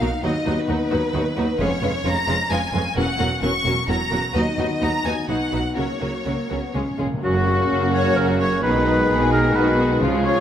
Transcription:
Already playing: A#3 D#4 F5
0.01 B1 B2 F#3 D#4
0.23 D#2 F#3 B3 D#4 F#4 B4 D#5
0.46 D#2 F#3 D#4 F#4 B4
0.59 B4
0.68 D#2 F#3 D#4 F#4 B4
0.91 D#2 F#3 D#4 F#4 B4
1.13 D#2 F#3 D#4 F#4 B4
1.37 D#2 F#3 D#4 F#4 B4
1.60 F1 F2 G#3 B3 C#4 F4 B4 C#5
1.82 F1 F2 G#3 C#4 F4 B4
2.04 F1 F2 G#3 C#4 F4 B4 A#5
2.27 F1 F2 G#3 C#4 F4 B4
2.51 F1 F2 G#3 C#4 F4 B4 G#5
2.74 F1 F2 G#3 C#4 F4 B4
2.96 E1 E2 F#3 A#3 C#4 F#4 A#4 F#5
3.19 E1 E2 F#3 C#4 F#4 A#4
3.42 E1 E2 F#3 C#4 F#4 A#4 C#6
3.65 E1 E2 F#3 C#4 F#4 A#4
3.88 E1 E2 F#3 C#4 F#4 A#4 A#5
4.11 E1 E2 F#3 C#4 F#4 A#4
4.34 D#2 F#3 B3 D#4 F#4 B4 D#5
4.58 D#2 F#3 D#4 F#4 B4
4.81 D#2 F#3 D#4 F#4 B4 A#5
5.04 D#2 F#3 D#4 F#4 B4 G#5
5.28 B1 B2 F#3 B3 D#4 F#4 B4 F#5
5.52 B1 B2 F#3 D#4 F#4 B4
5.76 C#2 C#3 F#3 A#3 C#4 F#4 A#4 C#5
6.00 C#2 C#3 F#3 C#4 F#4 A#4
6.25 C#2 C#3 F#3 A#3 C#4 F#4 A#4
6.49 C#2 C#3 F#3 B3 C#4 F#4 A#4
6.74 C#2 C#3 G#3 C#4 F4 G#4
6.83 C#3
6.90 C#3
6.99 C#2 C#3 G#3 A#3 C#4 F4 G#4
7.06 C#3
7.14 C#3
7.22 F#1 F#2 C#3 F#3 A#3 C#4 F#4 A#4
7.35 A#3 F#4
7.46 F#3 C#4
7.58 A#3 F#4
7.70 F#1 F#2 F#3 C#4
7.81 A#3 F#4
7.93 F#3 C#4 C#5
8.05 A#3 F#4
8.16 F#1 F#2 F#3 C#4 A#4
8.28 A#3 F#4
8.39 F#3 C#4 C#5
8.51 A#3 F#4
8.62 B1 B2 D#3 G#3 B3 D#4 G#4 B4
8.74 G#3 B3
8.85 B3 D#4
8.97 G#3 B3
9.09 B1 B2 B3 D#4 G#4
9.20 G#3 B3
9.32 B3 D#4 A#4
9.43 G#3 B3
9.54 B1 B2 B3 D#4 F#4 B4
9.66 G#3 B3
9.78 B3 D#4
9.90 G#3 B3
10.02 C#2 C#3 F3 F4
10.13 G#3 G#4
10.25 F3 F4 C#5
10.36 G#3 G#4

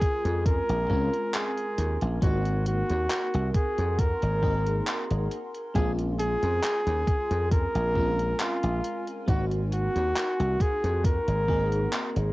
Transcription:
Already playing: G#3 C4 C#4 F4 G#4 A#4 G#5 C6
0.02 kick, closed hi-hat
0.25 F2, closed hi-hat
0.46 A#4, kick, closed hi-hat
0.69 A#1, closed hi-hat
0.88 C#2 G#3 C4 C#4 F4, kick
1.13 closed hi-hat
1.34 G#4, clap, closed hi-hat
1.57 closed hi-hat
1.78 D#2, closed hi-hat
2.01 A#1, closed hi-hat
2.21 G#1 A#3 C4 D#4 F#4 F#5, kick, closed hi-hat
2.45 closed hi-hat
2.66 F#4, closed hi-hat
2.90 D#2, closed hi-hat
3.10 clap, closed hi-hat
3.34 C2, closed hi-hat
3.54 G#4, kick, closed hi-hat
3.78 F2, closed hi-hat
3.99 A#4, kick, closed hi-hat
4.22 G#1, closed hi-hat
4.42 A#3 C4 D#4 G#4, kick
4.67 closed hi-hat
4.87 clap, closed hi-hat
5.11 G#1, closed hi-hat
5.31 G#5, closed hi-hat
5.55 closed hi-hat
5.74 A#1 G#3 C4 C#4 F4 G#4, kick, closed hi-hat
5.99 closed hi-hat
6.19 G#4, closed hi-hat
6.43 F2, closed hi-hat
6.63 clap, closed hi-hat
6.87 D#2, closed hi-hat
7.07 kick, closed hi-hat
7.31 F2, closed hi-hat
7.51 A#4, kick, closed hi-hat
7.75 A#1, closed hi-hat
7.95 G#3 C4 C#4 F4, kick
8.19 closed hi-hat
8.40 F4, clap, closed hi-hat
8.63 A#1, closed hi-hat
8.84 closed hi-hat
9.07 closed hi-hat
9.26 G#1 A#3 C4 D#4 F#4 F#5, kick, closed hi-hat
9.51 closed hi-hat
9.72 F#4, closed hi-hat
9.96 D#2, closed hi-hat
10.16 clap, closed hi-hat
10.40 C2, closed hi-hat
10.60 G#4, kick, closed hi-hat
10.84 F2, closed hi-hat
11.04 A#4, kick, closed hi-hat
11.28 G#1, closed hi-hat
11.48 A#3 C4 D#4 G#4, kick
11.72 closed hi-hat
11.93 clap, closed hi-hat
12.16 G#1, closed hi-hat

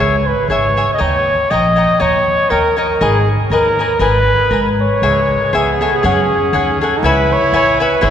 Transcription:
Already playing: C#5
0.00 C#2 G#4 C#5 E5 G#5
0.27 B4
0.48 G#1 G#4 C#5 E5 G#5
0.77 G#4 C#5 E5 G#5
0.93 D#5
0.98 D#2 C#5 D#5 G5 A#5
1.50 A#1 C#5 D#5 G5 A#5
1.76 C#5 D#5 G5 A#5
2.00 D#2 C#5 D#5 G5 A#5
2.50 D#2 A#4 C#5 D#5 G5 A#5
2.77 A#4 C#5 D#5 G5 A#5
3.01 G#1 G#4 A#4 B4 D#5 G#5
3.50 D#2 A#4 B4 D#5 G#5
3.79 A#4 B4 D#5 G#5
3.99 G#1 A#4 B4 D#5 G#5
4.51 G#2 A#4 B4 D#5 G#5
4.82 C#5
5.01 C#2 G#3 G#4 C#5 E5 G#5
5.53 C#2 B3 G#4 C#5 E5 G#5
5.81 G#4 A4 C#5 E5 G#5
5.94 G#4
6.03 F#2 C#4 G#4 C#5 F#5 G#5
6.53 D#2 G#4 C#5 F#5 G#5
6.81 G#4 A4 C#5 F#5 G#5
6.97 D#4
7.03 C#2 E4 B4 C#5 E5 G#5 B5
7.33 C#5
7.52 A1 C#5 E5 G#5 B5
7.80 B4 C#5 E5 G#5 B5
8.01 G#1 E4 G#4 C#5 E5

